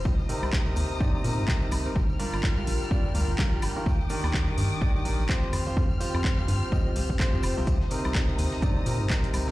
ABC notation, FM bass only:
X:1
M:4/4
L:1/16
Q:"Swing 16ths" 1/4=126
K:Cm
V:1 name="FM bass" clef=bass
C,, z2 C,,3 E,, z G,, z B,, G,, z2 C,, z | G,,, z2 G,,,3 B,,, z F,, z D,, G,,, z B,,, G,,, z | E,, z2 E,,3 G,, z B,,, z B,,, B,,, z2 F,, z | F,, z2 F,,3 G,, z E,, z C,, F,, z F,, F,,, C,, |
C,, z2 C,,3 E,, z G,, z B,, G,, z2 C,, z |]